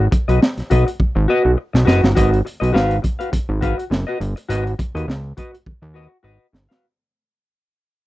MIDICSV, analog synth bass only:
0, 0, Header, 1, 2, 480
1, 0, Start_track
1, 0, Tempo, 583090
1, 1781, Time_signature, 4, 2, 24, 8
1, 6640, End_track
2, 0, Start_track
2, 0, Title_t, "Analog synth bass"
2, 0, Program_c, 0, 38
2, 235, Note_on_c, 0, 35, 85
2, 327, Note_off_c, 0, 35, 0
2, 473, Note_on_c, 0, 35, 53
2, 516, Note_off_c, 0, 35, 0
2, 584, Note_on_c, 0, 35, 87
2, 699, Note_off_c, 0, 35, 0
2, 954, Note_on_c, 0, 32, 105
2, 1046, Note_off_c, 0, 32, 0
2, 1195, Note_on_c, 0, 35, 87
2, 1287, Note_off_c, 0, 35, 0
2, 1435, Note_on_c, 0, 35, 96
2, 1527, Note_off_c, 0, 35, 0
2, 1540, Note_on_c, 0, 30, 103
2, 1657, Note_off_c, 0, 30, 0
2, 1675, Note_on_c, 0, 31, 93
2, 1767, Note_off_c, 0, 31, 0
2, 1783, Note_on_c, 0, 32, 119
2, 1990, Note_off_c, 0, 32, 0
2, 2155, Note_on_c, 0, 35, 87
2, 2247, Note_off_c, 0, 35, 0
2, 2259, Note_on_c, 0, 32, 94
2, 2468, Note_off_c, 0, 32, 0
2, 2741, Note_on_c, 0, 32, 45
2, 2795, Note_off_c, 0, 32, 0
2, 2872, Note_on_c, 0, 32, 90
2, 3081, Note_off_c, 0, 32, 0
2, 3217, Note_on_c, 0, 30, 95
2, 3335, Note_off_c, 0, 30, 0
2, 3461, Note_on_c, 0, 31, 90
2, 3577, Note_off_c, 0, 31, 0
2, 3699, Note_on_c, 0, 32, 110
2, 3907, Note_off_c, 0, 32, 0
2, 4073, Note_on_c, 0, 39, 85
2, 4165, Note_off_c, 0, 39, 0
2, 4179, Note_on_c, 0, 37, 95
2, 4387, Note_off_c, 0, 37, 0
2, 4664, Note_on_c, 0, 39, 47
2, 4717, Note_off_c, 0, 39, 0
2, 4793, Note_on_c, 0, 39, 101
2, 5001, Note_off_c, 0, 39, 0
2, 5137, Note_on_c, 0, 32, 96
2, 5255, Note_off_c, 0, 32, 0
2, 5378, Note_on_c, 0, 31, 93
2, 5495, Note_off_c, 0, 31, 0
2, 6640, End_track
0, 0, End_of_file